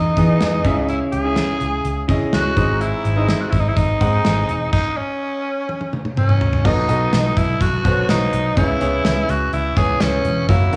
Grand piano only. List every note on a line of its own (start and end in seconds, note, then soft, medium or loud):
0.00 0.17 E3 medium
0.00 0.17 B3 medium
0.00 0.65 E4 medium
0.00 0.17 G#4 medium
0.00 0.18 D#5 medium
0.17 0.65 E3 medium
0.17 0.65 B3 medium
0.17 0.64 G#4 medium
0.17 0.65 D#5 medium
0.65 1.33 C#3 medium
0.65 1.14 C#4 medium
0.65 1.14 E4 medium
0.65 1.14 G#4 medium
0.65 1.14 E5 medium
1.24 1.93 C#4 medium
1.24 1.93 E4 medium
1.24 1.93 G#4 medium
1.24 1.94 E5 medium
2.08 2.57 C#4 medium
2.08 2.57 E4 medium
2.08 2.56 G#4 medium
2.08 2.56 D#5 medium
2.56 3.25 G#2 medium
2.56 3.06 C4 medium
2.56 3.06 D#4 medium
2.56 3.06 G#4 medium
2.56 3.06 D#5 medium
3.16 3.85 C4 medium
3.16 3.85 D#4 medium
3.16 3.85 G#4 medium
3.16 3.86 D#5 medium
4.00 4.59 C4 medium
4.00 4.59 D#4 medium
4.00 4.60 G#4 medium
4.00 4.60 F#5 medium
6.64 7.33 B2 medium
6.64 6.84 B3 medium
6.64 6.84 F#4 medium
6.64 6.85 A4 medium
6.64 6.85 D#5 medium
6.88 7.67 B3 medium
6.88 7.67 F#4 medium
6.88 7.67 A4 medium
6.88 7.67 D#5 medium
7.84 8.43 B3 medium
7.84 8.43 F#4 medium
7.84 8.44 A4 medium
7.84 7.91 C5 medium
7.91 8.47 C#5 medium
8.56 9.25 C#3 medium
8.56 8.76 B3 medium
8.56 8.76 E4 medium
8.56 8.76 G#4 medium
8.56 8.77 C#5 medium
8.80 9.59 B3 medium
8.80 9.59 E4 medium
8.80 9.59 G#4 medium
8.80 9.59 C#5 medium
9.76 10.35 B3 medium
9.76 10.35 E4 medium
9.76 10.36 G#4 medium
9.76 10.36 C#5 medium
10.48 10.68 A#3 medium
10.48 10.69 E4 medium
10.48 10.69 F#4 medium
10.48 10.69 C#5 medium
10.72 10.76 A#3 medium
10.72 10.76 E4 medium
10.72 10.76 F#4 medium